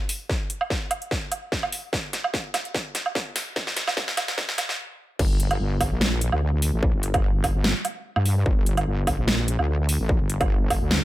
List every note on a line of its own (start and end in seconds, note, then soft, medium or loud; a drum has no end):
0.09 open hi-hat medium
0.30 kick medium
0.30 snare medium
0.50 closed hi-hat medium
0.61 low woodblock medium
0.70 kick medium
0.70 snare medium
0.91 closed hi-hat medium
0.91 low woodblock medium
1.02 closed hi-hat soft
1.11 kick medium
1.11 snare medium
1.32 closed hi-hat medium
1.32 low woodblock soft
1.52 kick medium
1.52 snare medium
1.63 low woodblock medium
1.72 open hi-hat medium
1.93 kick loud
1.93 snare medium
2.13 snare medium
2.13 closed hi-hat medium
2.24 low woodblock medium
2.34 kick medium
2.34 snare medium
2.54 snare medium
2.54 closed hi-hat medium
2.54 low woodblock medium
2.65 closed hi-hat soft
2.74 kick medium
2.74 snare medium
2.95 snare medium
2.95 closed hi-hat medium
3.06 low woodblock medium
3.15 kick loud
3.15 snare medium
3.36 snare medium
3.36 open hi-hat medium
3.56 kick medium
3.56 snare medium
3.67 snare medium
3.77 snare loud
3.77 closed hi-hat medium
3.88 snare medium
3.88 low woodblock medium
3.97 kick medium
3.97 snare loud
4.08 snare medium
4.17 snare loud
4.17 closed hi-hat medium
4.17 low woodblock medium
4.28 snare medium
4.28 closed hi-hat soft
4.38 kick loud
4.38 snare loud
4.49 snare medium
4.58 snare loud
4.58 closed hi-hat medium
4.58 low woodblock medium
4.69 snare medium
5.19 5.59 G1 medium
5.19 kick loud
5.19 crash loud
5.40 closed hi-hat medium
5.51 closed hi-hat soft
5.51 low woodblock medium
5.60 5.90 G1 loud
5.81 kick medium
5.81 open hi-hat medium
5.81 low woodblock medium
5.92 6.31 A#1 loud
6.01 snare loud
6.21 closed hi-hat medium
6.32 6.71 D2 loud
6.32 low woodblock medium
6.62 open hi-hat loud
6.73 6.92 A1 loud
6.83 kick loud
6.94 7.53 G1 loud
7.03 closed hi-hat medium
7.14 kick loud
7.14 closed hi-hat soft
7.14 low woodblock medium
7.44 kick medium
7.44 open hi-hat medium
7.44 low woodblock medium
7.55 7.74 G1 medium
7.64 snare loud
7.85 closed hi-hat medium
7.85 low woodblock soft
8.16 8.44 G2 loud
8.16 low woodblock medium
8.26 open hi-hat medium
8.46 8.85 G1 loud
8.46 kick loud
8.66 closed hi-hat medium
8.77 closed hi-hat soft
8.77 low woodblock medium
8.87 9.16 G1 loud
9.07 kick medium
9.07 open hi-hat medium
9.07 low woodblock medium
9.18 9.57 A#1 medium
9.28 snare loud
9.48 closed hi-hat medium
9.59 9.98 D2 loud
9.59 low woodblock medium
9.89 open hi-hat medium
10.00 10.18 A1 loud
10.09 kick loud
10.20 10.80 G1 loud
10.30 closed hi-hat medium
10.41 kick loud
10.41 closed hi-hat soft
10.41 low woodblock medium
10.70 kick medium
10.70 open hi-hat medium
10.70 low woodblock medium
10.81 11.00 D2 loud
10.91 snare loud